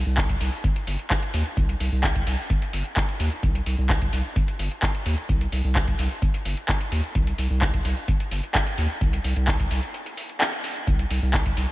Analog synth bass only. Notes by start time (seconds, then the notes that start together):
0.06 C2
0.41 C2
0.87 G1
1.34 D#2
1.57 C2
1.80 C2
1.92 C2
2.27 C2
2.73 G1
3.20 D#2
3.43 C2
3.66 C2
3.78 C2
4.13 C2
4.59 G1
5.06 D#2
5.29 C2
5.52 C2
5.64 C2
5.99 C2
6.45 G1
6.92 D#2
7.15 C2
7.38 C2
7.50 C2
7.85 C2
8.31 G1
8.78 D#2
9.01 C2
9.24 C2
9.36 C2
9.71 C2
10.87 C2
11.11 C2
11.23 C2
11.57 C2